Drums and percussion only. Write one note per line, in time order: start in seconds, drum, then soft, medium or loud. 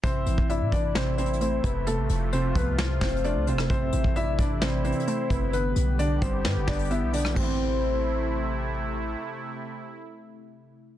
0.04 kick loud
0.04 closed hi-hat medium
0.26 closed hi-hat medium
0.38 kick medium
0.50 closed hi-hat medium
0.72 kick loud
0.72 closed hi-hat medium
0.95 snare loud
1.18 closed hi-hat medium
1.26 closed hi-hat medium
1.33 closed hi-hat medium
1.41 closed hi-hat medium
1.64 kick medium
1.64 closed hi-hat medium
1.87 closed hi-hat medium
2.09 closed hi-hat medium
2.33 closed hi-hat medium
2.56 kick loud
2.56 closed hi-hat medium
2.78 snare loud
3.01 kick medium
3.01 snare loud
3.09 closed hi-hat medium
3.17 closed hi-hat medium
3.24 closed hi-hat medium
3.47 closed hi-hat medium
3.58 cross-stick loud
3.70 kick loud
3.70 closed hi-hat medium
3.93 closed hi-hat medium
4.04 kick medium
4.16 closed hi-hat medium
4.39 kick loud
4.39 closed hi-hat medium
4.62 snare loud
4.85 closed hi-hat medium
4.92 closed hi-hat medium
5.00 closed hi-hat medium
5.07 closed hi-hat medium
5.30 kick medium
5.30 closed hi-hat medium
5.53 closed hi-hat medium
5.76 closed hi-hat medium
5.99 closed hi-hat medium
6.22 kick loud
6.22 closed hi-hat medium
6.45 snare loud
6.68 kick medium
6.68 snare medium
6.73 closed hi-hat medium
6.79 closed hi-hat medium
6.85 closed hi-hat medium
6.91 closed hi-hat medium
7.13 closed hi-hat medium
7.13 open hi-hat medium
7.19 closed hi-hat medium
7.25 cross-stick loud
7.31 closed hi-hat soft
7.36 kick loud
7.36 crash medium